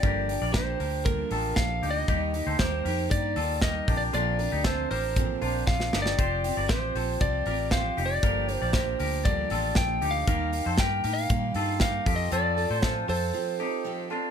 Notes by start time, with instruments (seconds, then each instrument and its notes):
Already playing: lead electric guitar D5
0.03 fingered electric bass G1, steel-string acoustic guitar G2 D3 F3 A#3 D4 G4, clean electric guitar G4 A#4, kick, closed hi-hat
0.29 steel-string acoustic guitar F3 A#3 D4 G4, open hi-hat
0.42 fingered electric bass A#1, clean electric guitar A#4 D5
0.54 steel-string acoustic guitar F3 A#3 D4 G4, clean electric guitar G4 A#4, lead electric guitar C5, kick, snare, closed hi-hat
0.80 fingered electric bass D2, steel-string acoustic guitar F3 A#3 D4 G4, clean electric guitar G4 A#4, open hi-hat
1.05 steel-string acoustic guitar G2 D3 F3 A#3 D4 G4, lead electric guitar A#4, kick, closed hi-hat
1.31 fingered electric bass A1, steel-string acoustic guitar F3 A#3 D4 G4, clean electric guitar F4 A4, open hi-hat
1.56 fingered electric bass A#1, steel-string acoustic guitar F3 A#3 D4 G4, lead electric guitar F5, kick, snare, closed hi-hat
1.82 fingered electric bass D2, steel-string acoustic guitar F3 A#3 D4 G4, clean electric guitar D#4 G4, open hi-hat
1.91 lead electric guitar D#5
2.08 fingered electric bass D#2, steel-string acoustic guitar D#3 G3 A#3 D#4 G4, clean electric guitar D#4 G4, kick, closed hi-hat
2.34 steel-string acoustic guitar A#3 D#4 G4, open hi-hat
2.47 fingered electric bass D2, clean electric guitar A4 C5
2.59 steel-string acoustic guitar G3 A#3 D#4 G4, clean electric guitar G4 A#4, lead electric guitar C5, kick, snare, closed hi-hat
2.85 fingered electric bass F2, steel-string acoustic guitar A#3 D#4 G4, clean electric guitar G4 A#4, open hi-hat
3.11 fingered electric bass G2, steel-string acoustic guitar D#3 G3 A#3 D#4 G4, lead electric guitar D5, kick, closed hi-hat
3.36 fingered electric bass D#2, steel-string acoustic guitar A#3 D#4 G4, clean electric guitar F4 A4, open hi-hat
3.62 steel-string acoustic guitar G3 A#3 D#4 G4, clean electric guitar G4 A#4, lead electric guitar D#5, kick, snare, closed hi-hat
3.88 fingered electric bass A#1, steel-string acoustic guitar F3 C4 D4 A#4, clean electric guitar D4 G4, kick, open hi-hat
3.97 lead electric guitar D5
4.13 fingered electric bass A#1, steel-string acoustic guitar A#2 D3 F3 C4 D4 A#4, clean electric guitar D4 F4, lead electric guitar D5, closed hi-hat
4.39 steel-string acoustic guitar F3 C4 D4 A#4, open hi-hat
4.52 fingered electric bass D2, clean electric guitar D#4 G4
4.64 steel-string acoustic guitar F3 C4 D4 A#4, clean electric guitar F4 A4, lead electric guitar C5, kick, snare, closed hi-hat
4.91 fingered electric bass A1, steel-string acoustic guitar F3 C4 D4 A#4, clean electric guitar G4 A#4, lead electric guitar C5, open hi-hat
5.16 steel-string acoustic guitar A#2 D3 F3 C4 D4 A#4, kick, closed hi-hat
5.41 fingered electric bass A#1, steel-string acoustic guitar F3 C4 D4 A#4, clean electric guitar D4 F4, open hi-hat
5.67 fingered electric bass A#1, steel-string acoustic guitar F3 C4 D4 A#4, lead electric guitar F5, kick, snare
5.80 snare
5.93 fingered electric bass G1, steel-string acoustic guitar F3 C4 D4 A#4, clean electric guitar D#4 G4, snare
6.02 lead electric guitar D5, snare
6.18 fingered electric bass F1, steel-string acoustic guitar F3 C4 F4 G4, clean electric guitar G4 C5, kick, closed hi-hat
6.44 steel-string acoustic guitar C4 F4 G4, open hi-hat
6.57 fingered electric bass G1, clean electric guitar A#4 D5
6.69 steel-string acoustic guitar F3 C4 G4, clean electric guitar G4 C5, lead electric guitar C5, kick, snare, closed hi-hat
6.95 fingered electric bass A#1, steel-string acoustic guitar C4 F4 G4, clean electric guitar A4 C5, open hi-hat
7.21 fingered electric bass C2, steel-string acoustic guitar F3 C4 F4 G4, lead electric guitar D5, kick, closed hi-hat
7.46 fingered electric bass A1, steel-string acoustic guitar C4 F4 G4, clean electric guitar G4 A#4, open hi-hat
7.71 steel-string acoustic guitar F3 C4 F4 G4, clean electric guitar G4 C5, lead electric guitar F5, kick, snare, closed hi-hat
7.97 fingered electric bass F1, steel-string acoustic guitar C4 F4 G4, clean electric guitar D#4 G4, open hi-hat
8.06 lead electric guitar D5
8.23 fingered electric bass G1, steel-string acoustic guitar G2 D3 F3 A#3 D4 G4, clean electric guitar G4 A#4, kick, closed hi-hat
8.48 steel-string acoustic guitar F3 A#3 D4 G4, open hi-hat
8.54 lead electric guitar C5
8.62 fingered electric bass A#1, clean electric guitar A#4 D5
8.73 steel-string acoustic guitar F3 A#3 D4 G4, clean electric guitar G4 A#4, lead electric guitar C5, kick, snare, closed hi-hat
8.99 fingered electric bass D2, steel-string acoustic guitar F3 A#3 D4 G4, clean electric guitar G4 A#4, open hi-hat
9.25 steel-string acoustic guitar G2 D3 F3 A#3 D4 G4, lead electric guitar D5, kick, closed hi-hat
9.50 fingered electric bass A1, steel-string acoustic guitar F3 A#3 D4 G4, clean electric guitar F4 A4, open hi-hat
9.75 fingered electric bass A#1, steel-string acoustic guitar F3 A#3 D4 G4, lead electric guitar G5, kick, snare, closed hi-hat
10.01 fingered electric bass D2, steel-string acoustic guitar F3 A#3 D4 G4, clean electric guitar D#4 G4, open hi-hat
10.11 lead electric guitar F5
10.27 fingered electric bass D#2, steel-string acoustic guitar D#3 G3 A#3 D#4 G4, clean electric guitar G4 A#4, kick, closed hi-hat
10.52 steel-string acoustic guitar A#3 D#4 G4, open hi-hat
10.66 fingered electric bass F2, clean electric guitar A4 C5
10.78 fingered electric bass G2, steel-string acoustic guitar G3 A#3 D#4 G4, clean electric guitar G4 A#4, lead electric guitar G5, kick, snare, closed hi-hat
11.04 fingered electric bass A2, steel-string acoustic guitar A#3 D#4 G4, clean electric guitar G4 A#4, open hi-hat
11.13 lead electric guitar F5
11.29 fingered electric bass A#2, steel-string acoustic guitar D#3 G3 A#3 D#4 G4, kick, closed hi-hat
11.54 fingered electric bass G2, steel-string acoustic guitar A#3 D#4 G4, clean electric guitar F4 A4, open hi-hat
11.80 steel-string acoustic guitar G3 A#3 D#4 G4, clean electric guitar G4 A#4, lead electric guitar F5, kick, snare, closed hi-hat
12.06 fingered electric bass F2, steel-string acoustic guitar C4 F4 A4, clean electric guitar C4 G4, kick, open hi-hat
12.16 lead electric guitar D#5
12.31 fingered electric bass F2, steel-string acoustic guitar F3 C4 F4 A4, clean electric guitar F4 A4, lead electric guitar D5, closed hi-hat
12.57 steel-string acoustic guitar C4 F4 A4, open hi-hat
12.70 fingered electric bass A2, clean electric guitar A4 C5
12.82 steel-string acoustic guitar F3 C4 F4 A4, clean electric guitar F4 A4, lead electric guitar C5, kick, snare, closed hi-hat
13.08 fingered electric bass F2, steel-string acoustic guitar C4 F4 A4, clean electric guitar F4 A4, lead electric guitar C5, open hi-hat
13.33 steel-string acoustic guitar F3 C4 F4 A4
13.59 steel-string acoustic guitar C4 F4 A4, clean electric guitar D#4 G4
13.84 steel-string acoustic guitar F3 C4 F4 A4
14.10 steel-string acoustic guitar C4 F4 A4, clean electric guitar D4 F4